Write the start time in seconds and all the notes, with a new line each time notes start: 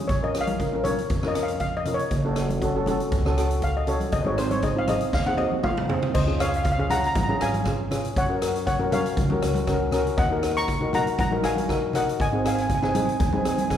0.08 A#1 C#5, kick, closed hi-hat
0.22 C#4 F4 A#4 D#5
0.35 C#4 F4 A#4, cross-stick, closed hi-hat
0.41 F5
0.47 closed hi-hat, high conga
0.60 C#4 F4 A#4, kick, closed hi-hat
0.73 C#4 F4 A#4
0.84 C#4 F4 A#4 C#5, closed hi-hat, high conga, low conga
0.98 closed hi-hat
1.10 F2, kick, closed hi-hat
1.23 C#4 F4 A#4, cross-stick, low conga
1.28 D#5
1.35 C#4 F4 A#4, cross-stick, closed hi-hat
1.43 F5
1.48 closed hi-hat
1.60 F5, kick, closed hi-hat
1.77 D#5
1.85 C#4 F4 A#4, closed hi-hat, low conga
1.94 C#5
1.99 closed hi-hat
2.11 F#1, kick, closed hi-hat
2.25 C#4 F#4 A4
2.36 C#4 F#4 A4, cross-stick, closed hi-hat
2.49 closed hi-hat, high conga
2.62 C#4 F#4 A4, kick, closed hi-hat
2.75 C#4 F#4 A4
2.86 C#4 F#4 A4, closed hi-hat, high conga, low conga
3.00 closed hi-hat
3.12 C#2, kick, closed hi-hat
3.25 C#4 F#4 A4, cross-stick, low conga
3.38 C#4 F#4 A4, cross-stick, closed hi-hat
3.51 closed hi-hat
3.62 F5, kick, closed hi-hat
3.77 D#5
3.87 C#4 F#4 A4 C#5, closed hi-hat, low conga
4.00 closed hi-hat, high conga
4.12 G#1 D#5, kick, closed hi-hat
4.25 C4 D#4 G#4 C#5, high conga
4.38 C4 D#4 G#4 C5, cross-stick, closed hi-hat
4.51 C#5, closed hi-hat, high conga
4.62 C4 D#4 G#4 D#5, kick, closed hi-hat
4.75 C4 D#4 F4 F5
4.88 C4 D#4 G#4 D#5, cross-stick, closed hi-hat, high conga, low conga
5.01 closed hi-hat
5.13 D#2 F5, kick, snare
5.27 C4 D#4 G#4 F#5, low conga
5.37 C4 D#4 F#4 D#5, high tom
5.51 high conga
5.63 F5, kick, mid tom, high conga
5.77 mid tom, high conga
5.88 C4 D#4 G#4, floor tom, low conga
6.02 floor tom, low conga
6.14 C#2 C5 D#5, kick, crash
6.27 C#4 F4 G#4
6.39 C#4 F4 G#4 C#5 F5, cross-stick, closed hi-hat
6.49 F5
6.54 F5, closed hi-hat
6.64 F5, kick, closed hi-hat
6.72 F5
6.78 C#4 F4 G#4 F5, low conga
6.90 C#4 F4 G#4 F#5 A#5, closed hi-hat, high conga, low conga
7.00 A#5, closed hi-hat
7.07 A#5
7.15 G#1 A#5, kick, closed hi-hat, high conga
7.23 A#5
7.28 C#4 F4 G#4 A#5, high conga
7.40 G#1 C#4 F4 G#4 F5 G#5, cross-stick, closed hi-hat
7.54 closed hi-hat, high conga
7.65 C#4 F4 G#4, kick, cross-stick, closed hi-hat
7.91 C#4 F4 G#4, cross-stick, closed hi-hat, low conga
8.04 closed hi-hat
8.16 F#2 C#5 F#5, kick, closed hi-hat
8.29 C#4 F#4 A#4
8.42 C#4 F#4 A#4, cross-stick, closed hi-hat
8.56 closed hi-hat
8.67 C#5 F#5, kick, closed hi-hat
8.79 C#4 F#4 A#4, low conga
8.91 C#4 F#4 A#4 C#5 F5, closed hi-hat, high conga, low conga
9.06 closed hi-hat
9.17 C#2, kick, closed hi-hat, high conga
9.30 C#4 F#4 A#4, high conga
9.42 C#2 C#4 F#4 A#4, cross-stick, closed hi-hat
9.54 closed hi-hat, high conga
9.67 C#4 F#4 A#4, kick, cross-stick, closed hi-hat
9.91 C#4 F#4 A#4, cross-stick, closed hi-hat, low conga
10.07 closed hi-hat
10.17 D#2 D#5 F#5, kick, closed hi-hat
10.30 D#4 F#4 A#4
10.42 D#4 F#4 A#4, cross-stick, closed hi-hat
10.57 A#5 C#6, closed hi-hat
10.68 kick, closed hi-hat
10.80 D#4 F#4 A#4, low conga
10.93 D#4 F#4 A#4 F#5 A#5, closed hi-hat, high conga, low conga
11.07 closed hi-hat
11.18 A#1 F#5 A#5, kick, closed hi-hat, high conga
11.31 D#4 F#4 A#4, high conga
11.42 A#1 D#4 F#4 A#4 F5 G#5, cross-stick, closed hi-hat
11.56 closed hi-hat, high conga
11.68 D#4 F#4 A#4, kick, cross-stick, closed hi-hat
11.93 D#4 F#4 A#4 D#5 F#5, cross-stick, closed hi-hat, low conga
12.09 closed hi-hat
12.20 G#1 D#5 G#5, kick, closed hi-hat
12.32 C4 D#4 G#4
12.44 C4 D#4 G#4 F5 G#5, cross-stick, closed hi-hat
12.55 G#5, closed hi-hat
12.62 G#5
12.67 G#5, kick, closed hi-hat
12.75 G#5
12.82 C4 D#4 G#4 G#5, cross-stick, low conga
12.90 G#5
12.94 C4 D#4 G#4 G#5, closed hi-hat, high conga, low conga
13.05 G#5, closed hi-hat
13.12 G#5
13.20 D#2 G#5, kick, closed hi-hat, high conga
13.26 G#5
13.33 C4 D#4 G#4 G#5, high conga
13.41 C4 G#5
13.45 D#2 D#4 G#4 G#5, cross-stick, closed hi-hat
13.56 G#5, closed hi-hat, high conga
13.61 G#5
13.70 C4 D#4 G#4 G#5, kick, cross-stick, closed hi-hat